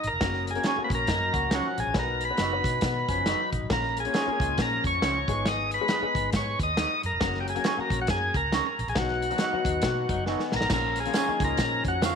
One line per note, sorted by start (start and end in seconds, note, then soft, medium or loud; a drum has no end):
0.03 0.11 G#1 medium
0.03 0.46 A#4 medium
0.03 closed hi-hat medium
0.13 0.20 F1 medium
0.21 0.56 F#1 medium
0.21 0.48 A#3 medium
0.21 0.48 C#4 medium
0.21 0.48 F#4 medium
0.21 0.48 A#4 medium
0.21 kick loud
0.21 snare loud
0.21 closed hi-hat medium
0.34 snare soft
0.47 0.67 G#4 medium
0.47 closed hi-hat medium
0.55 0.69 A#3 medium
0.55 0.70 C#4 medium
0.55 0.70 F#4 medium
0.55 0.70 A#4 medium
0.55 closed hi-hat soft
0.64 0.77 C#4 medium
0.64 0.78 F#4 medium
0.64 0.78 A#4 medium
0.64 0.78 C#5 medium
0.64 snare loud
0.64 closed hi-hat medium
0.68 0.83 G#4 medium
0.77 0.84 A3 medium
0.77 1.40 C#4 medium
0.77 1.40 F#4 medium
0.77 1.40 C#5 medium
0.77 muted fingered electric bass stroke soft
0.83 1.42 A#3 medium
0.83 0.92 B4 medium
0.90 1.05 A#1 medium
0.90 kick loud
0.90 closed hi-hat medium
0.95 1.56 A#4 loud
1.07 1.29 F#2 medium
1.07 1.33 F#3 medium
1.07 1.33 D#4 medium
1.07 kick medium
1.07 snare loud
1.07 closed hi-hat medium
1.33 1.59 C#2 medium
1.33 1.51 A#3 medium
1.33 1.50 F#4 medium
1.33 kick medium
1.33 closed hi-hat medium
1.51 1.94 F3 medium
1.51 1.93 C#4 medium
1.51 1.65 C#4 medium
1.51 1.65 F#4 medium
1.51 1.80 F#4 medium
1.51 1.65 A#4 medium
1.51 1.65 C#5 medium
1.51 snare loud
1.51 closed hi-hat medium
1.78 1.85 A#1 medium
1.78 1.97 G#4 medium
1.78 closed hi-hat medium
1.87 1.94 A#1 medium
1.94 2.31 B1 medium
1.94 2.22 B3 medium
1.94 2.22 D#4 medium
1.94 2.22 F#4 medium
1.94 2.22 B4 medium
1.94 kick loud
1.94 snare loud
1.94 closed hi-hat medium
1.99 2.24 A#4 medium
2.21 closed hi-hat medium
2.25 3.50 B4 medium
2.30 2.44 B3 medium
2.30 2.44 D#4 medium
2.30 2.44 F#4 medium
2.30 2.44 B4 medium
2.37 2.60 F#1 medium
2.37 2.52 D#4 medium
2.37 2.52 F#4 medium
2.37 2.53 B4 medium
2.37 2.53 D#5 medium
2.37 snare loud
2.37 closed hi-hat medium
2.53 3.14 B3 medium
2.53 2.59 D4 soft
2.53 3.15 F#4 medium
2.53 3.15 B4 medium
2.58 3.17 D#4 medium
2.64 2.79 B2 medium
2.64 kick medium
2.64 closed hi-hat medium
2.81 3.04 B2 medium
2.81 3.08 D#3 medium
2.81 3.07 B3 medium
2.81 kick medium
2.81 snare loud
2.81 closed hi-hat medium
3.08 3.34 F#1 medium
3.08 3.26 F3 medium
3.08 3.25 C#4 medium
3.08 kick medium
3.08 closed hi-hat medium
3.26 3.69 F#3 medium
3.26 3.39 D#4 medium
3.26 3.68 D#4 medium
3.26 3.40 F#4 medium
3.26 3.40 B4 medium
3.26 3.40 D#5 medium
3.26 snare loud
3.26 closed hi-hat medium
3.53 3.60 A#1 medium
3.53 kick medium
3.53 closed hi-hat medium
3.62 3.69 A1 medium
3.70 4.06 A#1 medium
3.70 3.97 A#3 medium
3.70 3.97 C#4 medium
3.70 3.97 F4 medium
3.70 3.97 A#4 medium
3.70 3.98 A#4 medium
3.70 kick loud
3.70 snare loud
3.70 closed hi-hat medium
3.84 snare soft
3.97 4.61 G#4 medium
3.97 closed hi-hat medium
4.05 4.20 A#3 medium
4.05 4.19 C#4 medium
4.05 4.20 F4 medium
4.05 4.20 C#5 medium
4.05 closed hi-hat soft
4.13 4.27 C#4 medium
4.13 4.27 F4 medium
4.13 4.38 G#4 medium
4.13 4.27 A#4 medium
4.13 4.27 C#5 medium
4.13 snare loud
4.13 closed hi-hat medium
4.27 4.89 A#3 medium
4.27 4.89 C#4 medium
4.27 4.89 F4 medium
4.27 4.33 G#4 medium
4.27 muted fingered electric bass stroke soft
4.33 4.92 A#4 medium
4.40 4.54 C#2 medium
4.40 4.57 G#3 medium
4.40 4.57 F4 medium
4.40 kick medium
4.40 closed hi-hat medium
4.58 4.79 A#2 medium
4.58 5.25 F3 medium
4.58 5.25 C#4 medium
4.58 kick medium
4.58 snare loud
4.58 closed hi-hat medium
4.62 4.84 A#4 medium
4.84 4.98 F2 medium
4.84 5.49 C#5 loud
4.84 kick medium
4.84 closed hi-hat medium
5.02 5.23 C#2 medium
5.02 5.15 C#4 medium
5.02 5.15 F4 medium
5.02 5.15 A#4 medium
5.02 5.16 C#5 medium
5.02 snare loud
5.02 closed hi-hat medium
5.28 5.78 G#1 medium
5.28 5.72 G#3 medium
5.28 5.72 B3 medium
5.28 5.72 D#4 medium
5.28 5.72 G#4 medium
5.28 kick medium
5.28 closed hi-hat medium
5.46 5.71 D#5 loud
5.46 snare loud
5.46 closed hi-hat medium
5.71 6.30 B4 medium
5.71 closed hi-hat medium
5.81 5.95 G#3 medium
5.81 5.95 B3 medium
5.81 5.95 D#4 medium
5.81 5.95 G#4 medium
5.88 6.02 D#4 medium
5.88 6.03 G#4 medium
5.88 6.03 B4 medium
5.88 6.03 D#5 medium
5.88 snare loud
5.88 closed hi-hat medium
6.02 6.64 G#3 medium
6.02 6.65 B3 medium
6.02 6.65 D#4 medium
6.02 6.65 G#4 medium
6.02 muted fingered electric bass stroke soft
6.15 6.30 G#1 medium
6.15 kick loud
6.15 closed hi-hat medium
6.33 6.54 G#2 medium
6.33 6.59 C#5 medium
6.33 kick medium
6.33 snare loud
6.33 closed hi-hat medium
6.59 6.84 D#2 medium
6.59 7.02 D#5 loud
6.59 kick medium
6.59 closed hi-hat medium
6.77 6.90 D#4 medium
6.77 6.90 G#4 medium
6.77 6.91 B4 medium
6.77 6.91 D#5 medium
6.77 snare loud
6.77 closed hi-hat medium
7.03 7.10 F#2 medium
7.03 7.39 A#4 medium
7.03 closed hi-hat medium
7.13 7.19 F1 medium
7.20 7.56 F#1 medium
7.20 7.48 F#3 medium
7.20 7.48 A#3 medium
7.20 7.48 C#4 medium
7.20 7.48 F#4 medium
7.20 kick loud
7.20 snare loud
7.20 closed hi-hat medium
7.34 snare soft
7.40 7.47 G4 medium
7.48 7.66 G#4 medium
7.48 closed hi-hat medium
7.55 7.69 F#3 medium
7.55 7.70 A#3 medium
7.55 7.70 C#4 medium
7.55 7.70 F#4 medium
7.55 closed hi-hat soft
7.64 7.77 C#4 medium
7.64 7.78 F#4 medium
7.64 7.79 G#4 medium
7.64 7.78 A#4 medium
7.64 7.78 C#5 medium
7.64 snare loud
7.64 closed hi-hat medium
7.77 8.39 F#3 medium
7.77 8.40 A#3 medium
7.77 8.40 C#4 medium
7.77 8.40 F#4 medium
7.77 8.00 A#4 medium
7.77 muted fingered electric bass stroke soft
7.90 8.05 A#1 medium
7.90 kick loud
7.90 closed hi-hat medium
8.01 8.09 F#4 medium
8.07 8.30 F#2 medium
8.07 8.36 G#4 medium
8.07 kick medium
8.07 snare loud
8.07 closed hi-hat medium
8.34 8.59 C#2 medium
8.34 8.65 A#4 loud
8.34 kick medium
8.34 closed hi-hat medium
8.52 8.65 C#4 medium
8.52 8.65 F#4 medium
8.52 8.65 A#4 medium
8.52 8.66 C#5 medium
8.52 snare loud
8.52 closed hi-hat medium
8.66 8.88 A#4 medium
8.79 8.86 A#1 medium
8.79 closed hi-hat medium
8.87 8.94 A#1 medium
8.87 8.97 G#4 medium
8.87 closed hi-hat soft
8.95 9.32 B1 medium
8.95 9.23 F#3 medium
8.95 9.23 B3 medium
8.95 9.23 D#4 medium
8.95 9.23 F#4 medium
8.95 10.24 F#4 medium
8.95 kick loud
8.95 snare loud
8.95 closed hi-hat medium
9.08 snare soft
9.22 closed hi-hat medium
9.30 9.45 F#3 medium
9.30 9.45 B3 medium
9.30 9.45 D#4 medium
9.30 9.45 F#4 medium
9.30 closed hi-hat soft
9.38 9.53 D#4 medium
9.38 9.53 F#4 medium
9.38 9.53 B4 medium
9.38 9.53 D#5 medium
9.38 snare loud
9.38 closed hi-hat medium
9.53 10.15 F#3 medium
9.53 10.15 B3 medium
9.53 10.15 D#4 medium
9.53 10.15 F#4 medium
9.53 muted fingered electric bass stroke soft
9.65 9.80 D#2 medium
9.65 9.82 D#5 medium
9.65 kick loud
9.65 closed hi-hat medium
9.82 10.04 B2 loud
9.82 10.09 A#3 medium
9.82 10.09 F#4 medium
9.82 10.24 F#5 medium
9.82 kick medium
9.82 snare loud
9.82 closed hi-hat medium
10.09 10.34 F#1 medium
10.09 10.27 F#3 medium
10.09 10.26 D#4 medium
10.09 kick medium
10.09 closed hi-hat medium
10.26 10.69 D#3 medium
10.26 10.68 B3 medium
10.26 10.40 D#4 medium
10.26 10.41 F#4 medium
10.26 10.41 B4 medium
10.26 10.41 D#5 medium
10.26 10.52 G#5 medium
10.26 snare soft
10.40 snare soft
10.52 10.61 A#1 medium
10.52 10.70 A#5 medium
10.52 snare medium
10.56 10.72 A#4 medium
10.61 10.69 A1 medium
10.61 snare medium
10.70 11.06 A#1 medium
10.70 10.98 F3 medium
10.70 10.98 A#3 medium
10.70 10.98 C#4 medium
10.70 10.99 F4 medium
10.70 10.99 A#4 medium
10.70 kick loud
10.70 snare loud
10.70 crash medium
10.70 tambourine medium
10.70 muted conga soft
10.96 closed hi-hat medium
11.00 11.16 G#4 medium
11.05 11.20 F3 medium
11.05 11.20 A#3 medium
11.05 11.20 C#4 medium
11.05 11.20 F4 medium
11.05 closed hi-hat soft
11.14 11.28 C#4 medium
11.14 11.28 F4 medium
11.14 11.40 G#4 medium
11.14 11.43 G#4 medium
11.14 11.28 A#4 medium
11.14 11.29 C#5 medium
11.14 snare loud
11.14 closed hi-hat medium
11.14 tambourine medium
11.14 high conga medium
11.27 11.90 F3 medium
11.27 11.90 A#3 medium
11.27 11.90 C#4 medium
11.27 11.90 D#4 medium
11.27 muted fingered electric bass stroke soft
11.40 11.55 C#2 medium
11.40 11.58 G#3 medium
11.40 11.57 F4 medium
11.40 kick loud
11.40 closed hi-hat medium
11.40 low conga medium
11.44 11.84 A#4 medium
11.57 11.80 A#2 loud
11.57 12.15 F3 medium
11.57 12.15 C#4 medium
11.57 kick medium
11.57 snare loud
11.57 closed hi-hat medium
11.57 tambourine medium
11.84 12.15 F2 medium
11.84 12.05 F#4 medium
11.84 kick medium
11.84 closed hi-hat medium
11.84 muted conga soft
12.02 12.15 C#4 medium
12.02 12.15 F4 medium
12.02 12.15 A#4 medium
12.02 12.15 C#5 medium
12.02 snare loud
12.02 closed hi-hat medium
12.02 tambourine medium
12.02 high conga medium